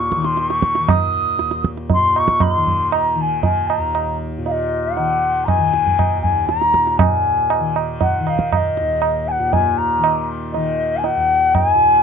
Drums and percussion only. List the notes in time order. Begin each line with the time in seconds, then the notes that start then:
0.12 tabla ke
0.24 tabla te
0.37 tabla te
0.50 tabla te
0.62 tabla ke
0.75 tabla te
0.88 tabla na, tabla ge
1.39 tabla te
1.51 tabla te
1.64 tabla ke
1.77 tabla te
1.90 tabla tin, tabla ge
2.16 tabla na
2.28 tabla ke
2.40 tabla na, tabla ge
2.67 tabla ge
2.92 tabla na
3.43 tabla tin, tabla ge
3.70 tabla na
3.95 tabla na
4.46 tabla tin
4.97 tabla tin
5.48 tabla na, tabla ge
5.74 tabla te
5.87 tabla ge
5.99 tabla na, tabla ge
6.24 tabla ge
6.49 tabla te
6.62 tabla te
6.74 tabla ke
6.87 tabla te
6.99 tabla na, tabla ge
7.50 tabla na
7.76 tabla na
8.01 tabla tin, tabla ge
8.27 tabla na
8.39 tabla ke
8.52 tabla na, tabla ge
8.77 tabla te
9.02 tabla na
9.53 tabla tin, tabla ge
10.04 tabla na
10.54 tabla tin
11.04 tabla tin
11.55 tabla na, tabla ge